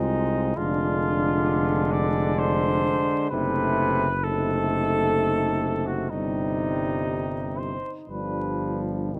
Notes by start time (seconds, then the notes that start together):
Already playing: C2 G#3 C4 D#4 F4
0.56 F1 D3 G#3 D4 F4
1.93 D5
2.39 C5
3.30 F#1 C3 A3 D#4 B4
4.21 A3 D#4 A4
4.26 C3
5.86 F#4
6.09 G1 C3 G3 D#4
7.59 C5
8.09 G1 F3 G3 D4 B4
9.13 C2 D#3 G3 C4 D#4